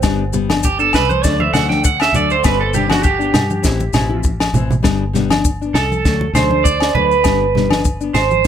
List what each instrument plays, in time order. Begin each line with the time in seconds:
0.02 fingered electric bass G1, nylon-string guitar G3 B3 D4, kick, snare, low agogo, maracas
0.32 nylon-string guitar G3 B3, muted nylon-string guitar stroke, low conga, maracas
0.49 nylon-string guitar B3 D4, snare, high conga, low agogo
0.63 clean electric guitar G4, kick, maracas
0.79 nylon-string guitar B3 D4, clean electric guitar A4, maracas
0.93 fingered electric bass C2, clean electric guitar B4, snare, low conga, low agogo, maracas
1.10 clean electric guitar C5, high conga, maracas
1.24 fingered electric bass D2, nylon-string guitar F#3 A3 D4, clean electric guitar D5, kick, snare, maracas
1.40 clean electric guitar E5, high conga
1.53 fingered electric bass D2, nylon-string guitar F#3 A3 D4, clean electric guitar F#5, snare, low conga, low agogo, maracas
1.69 nylon-string guitar A3 D4, clean electric guitar G5, snare, high conga
1.84 clean electric guitar F#5, kick, maracas
2.00 clean electric guitar E5, snare, low agogo, maracas
2.13 fingered electric bass D2, nylon-string guitar F#3 A3 D4, clean electric guitar D5, low conga, maracas
2.30 clean electric guitar C5, maracas
2.43 fingered electric bass G1, nylon-string guitar G3 B3 D4, clean electric guitar B4, kick, snare, low agogo, maracas
2.61 clean electric guitar A4
2.73 nylon-string guitar G3 B3 D4, clean electric guitar G4, low conga, maracas
2.88 nylon-string guitar B3 D4, clean electric guitar F#4, snare, high conga, low agogo
3.03 clean electric guitar G4, kick, maracas
3.19 nylon-string guitar B3 D4, maracas
3.34 fingered electric bass G2, snare, low conga, low agogo, maracas
3.50 high conga, maracas
3.62 fingered electric bass A1, nylon-string guitar E3 C4 E4, kick, snare, maracas
3.80 high conga, maracas
3.93 fingered electric bass A1, nylon-string guitar E3 C4 E4, snare, low conga, low agogo, maracas
4.09 nylon-string guitar E4, high conga
4.13 nylon-string guitar C4
4.23 kick, high conga, maracas
4.40 snare, high conga, low agogo
4.53 fingered electric bass A1, nylon-string guitar E3 C4 E4, low conga, maracas
4.71 low conga, maracas
4.83 fingered electric bass G1, nylon-string guitar G3 B3 D4, kick, snare, low agogo, maracas
5.13 nylon-string guitar G3 B3 D4, snare, low conga, maracas
5.30 nylon-string guitar D4, snare, high conga, low agogo
5.35 nylon-string guitar B3
5.45 kick, maracas
5.61 nylon-string guitar B3 D4, maracas
5.74 fingered electric bass C2, clean electric guitar A4, snare, low conga, low agogo, maracas
5.92 high conga, maracas
6.05 fingered electric bass D2, nylon-string guitar F#3 A3 D4, kick, snare, maracas
6.21 high conga
6.33 fingered electric bass D2, nylon-string guitar F#3, clean electric guitar C5, snare, low conga, low agogo, maracas
6.38 nylon-string guitar A3 D4
6.51 nylon-string guitar A3 D4, high conga
6.64 clean electric guitar D5, kick, maracas
6.80 snare, low agogo, maracas
6.94 fingered electric bass D2, nylon-string guitar F#3 A3 D4, clean electric guitar B4, low conga
7.11 maracas
7.24 fingered electric bass G1, nylon-string guitar G3 B3 D4, kick, snare, low agogo, maracas
7.55 nylon-string guitar G3 B3 D4, snare, low conga
7.69 nylon-string guitar B3 D4, snare, high conga, low agogo
7.85 kick, maracas
8.01 nylon-string guitar B3 D4, maracas
8.14 fingered electric bass G#1, clean electric guitar C5, snare, low conga, low agogo, maracas
8.31 high conga, maracas